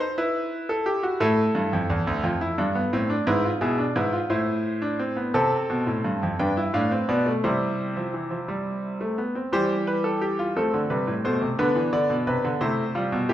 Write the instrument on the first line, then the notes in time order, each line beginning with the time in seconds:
grand piano
0.00 C5
0.18 E4 B4
0.69 A4
0.86 G4
1.03 F#4
1.20 A2 E4 A4
1.55 G2
1.73 F2
1.90 E2
2.07 D2
2.23 F2 F4
2.41 E4
2.58 G2 D4
2.75 B3
2.93 A2 C4
3.10 D4
3.27 G#2 E4 B4
3.44 F4
3.61 B2 E4 G#4
3.78 D4
3.96 G#2 E4 B4
4.13 F4
4.30 A2 E4 C5
4.82 D4
4.99 C4
5.17 B3
5.34 C3 C4 A4 A5
5.70 B2
5.87 A2
6.04 G2
6.23 F2
6.39 G2 D4 B4 G5
6.57 E4
6.74 A2 D4 F5
6.91 C4
7.09 B2 B3 D5
7.26 A3
7.44 C3 G3 E4 C5
7.96 F3
8.13 E3
8.31 F3
8.48 G3
9.01 A3
9.18 B3
9.35 C4
9.52 E3 G3 G4 C5
9.87 B4
10.04 A4
10.21 G4
10.39 F4
10.56 F3 A3 C4 A4
10.74 D3
10.90 C3 G3 B4
11.07 A2
11.25 B2 A3 C5
11.41 C3
11.59 D3 B3 D4 B4
11.76 E3
11.93 D3 D5
12.10 B2
12.27 C3 B4
12.45 D3
12.61 C3 A3 E4 C5
12.95 G3 F4
13.12 B2
13.29 A2 A3 G4